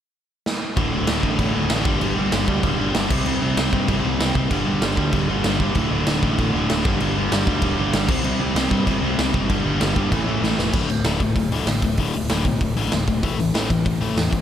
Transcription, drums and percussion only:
0.46 snare medium
0.77 kick loud
0.77 crash medium
1.07 snare loud
1.07 crash medium
1.23 kick medium
1.39 kick medium
1.39 crash medium
1.70 snare loud
1.70 crash medium
1.85 kick loud
2.01 crash medium
2.32 snare loud
2.32 crash medium
2.48 kick medium
2.63 kick medium
2.63 crash medium
2.94 snare loud
2.94 crash medium
3.10 kick loud
3.10 crash loud
3.26 crash medium
3.57 snare loud
3.57 crash medium
3.73 kick medium
3.88 kick loud
3.88 crash medium
4.20 snare loud
4.20 crash medium
4.35 kick medium
4.51 kick loud
4.51 crash medium
4.82 snare loud
4.82 crash medium
4.97 kick medium
5.13 kick medium
5.13 crash medium
5.44 snare loud
5.44 crash medium
5.60 kick medium
5.75 kick medium
5.75 crash medium
6.07 snare loud
6.07 crash medium
6.23 kick medium
6.38 kick medium
6.38 crash medium
6.70 snare loud
6.70 crash medium
6.85 kick loud
7.00 crash medium
7.32 snare loud
7.32 crash medium
7.47 kick medium
7.62 kick loud
7.62 crash medium
7.93 snare loud
7.93 crash medium
8.09 kick loud
8.09 crash loud
8.24 crash medium
8.56 snare loud
8.56 crash medium
8.71 kick medium
8.87 kick medium
8.87 crash medium
9.19 snare loud
9.19 crash medium
9.34 kick medium
9.50 kick loud
9.50 crash medium
9.81 snare loud
9.81 crash medium
9.96 kick medium
10.12 kick loud
10.12 crash medium
10.44 snare medium
10.59 snare loud
10.73 kick loud
10.73 crash loud
10.90 open hi-hat medium
11.04 snare loud
11.04 open hi-hat medium
11.20 kick medium
11.20 open hi-hat medium
11.36 kick medium
11.36 open hi-hat medium
11.52 open hi-hat medium
11.67 snare loud
11.67 open hi-hat medium
11.82 kick medium
11.82 open hi-hat medium
11.97 kick loud
11.97 open hi-hat medium
12.14 open hi-hat medium
12.29 snare loud
12.29 open hi-hat medium
12.45 kick medium
12.45 open hi-hat medium
12.61 kick medium
12.61 open hi-hat medium
12.77 open hi-hat medium
12.92 snare loud
12.92 open hi-hat medium
13.07 kick medium
13.07 open hi-hat medium
13.23 kick loud
13.23 open hi-hat medium
13.40 open hi-hat medium
13.55 snare loud
13.55 open hi-hat medium
13.70 kick medium
13.70 open hi-hat medium
13.86 kick loud
13.86 open hi-hat medium
14.02 open hi-hat medium
14.17 snare loud
14.17 open hi-hat medium
14.33 kick medium
14.33 open hi-hat medium

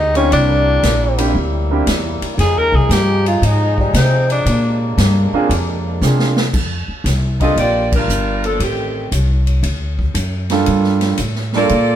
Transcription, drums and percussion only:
0.15 ride medium
0.32 ride medium
0.83 snare medium
0.83 hi-hat pedal medium
0.83 ride medium
1.18 ride medium
1.87 snare medium
1.87 hi-hat pedal medium
1.87 ride medium
2.22 ride medium
2.39 snare soft
2.39 ride medium
2.74 kick medium
2.91 snare medium
2.91 hi-hat pedal medium
2.91 ride medium
3.26 ride soft
3.43 ride medium
3.78 kick medium
3.94 snare medium
3.94 hi-hat pedal medium
3.94 ride medium
4.30 ride soft
4.46 ride medium
4.98 snare medium
4.98 hi-hat pedal medium
4.98 ride medium
5.51 ride medium
6.02 snare medium
6.02 hi-hat pedal medium
6.19 snare medium
6.37 snare medium
6.54 kick medium
6.54 crash medium
7.06 snare soft
7.06 hi-hat pedal medium
7.06 ride medium
7.40 kick medium
7.40 ride soft
7.57 ride medium
7.92 kick medium
7.92 crash medium
8.09 hi-hat pedal medium
8.44 ride soft
8.60 ride medium
9.12 hi-hat pedal medium
9.12 ride medium
9.47 ride soft
9.63 ride medium
9.99 kick medium
10.15 hi-hat pedal medium
10.15 ride medium
10.50 snare soft
10.50 ride medium
10.66 ride medium
10.83 snare soft
11.01 snare soft
11.01 ride soft
11.17 hi-hat pedal medium
11.17 ride medium
11.35 snare soft
11.52 snare soft
11.69 ride medium

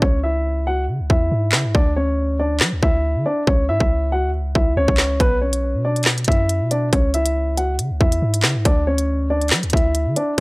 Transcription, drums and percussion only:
0.02 kick loud
1.10 kick loud
1.52 snare loud
1.52 clap medium
1.75 kick loud
2.60 snare loud
2.60 clap loud
2.83 kick loud
3.47 kick loud
3.80 kick medium
4.55 kick loud
4.88 kick medium
4.98 snare loud
4.98 clap medium
5.20 kick loud
5.20 closed hi-hat medium
5.53 closed hi-hat medium
5.96 closed hi-hat soft
6.03 snare loud
6.03 clap loud
6.03 closed hi-hat soft
6.10 closed hi-hat medium
6.18 closed hi-hat medium
6.24 kick loud
6.24 closed hi-hat medium
6.32 closed hi-hat medium
6.49 closed hi-hat medium
6.71 closed hi-hat medium
6.93 kick loud
6.93 closed hi-hat medium
7.14 closed hi-hat medium
7.26 closed hi-hat medium
7.57 closed hi-hat medium
7.79 closed hi-hat medium
8.01 kick loud
8.12 closed hi-hat medium
8.34 closed hi-hat medium
8.43 snare loud
8.43 clap loud
8.65 kick loud
8.65 closed hi-hat medium
8.98 closed hi-hat medium
9.41 closed hi-hat soft
9.48 snare loud
9.48 clap loud
9.48 closed hi-hat soft
9.55 closed hi-hat medium
9.63 closed hi-hat medium
9.70 kick loud
9.70 closed hi-hat medium
9.77 closed hi-hat medium
9.95 closed hi-hat medium
10.16 closed hi-hat medium

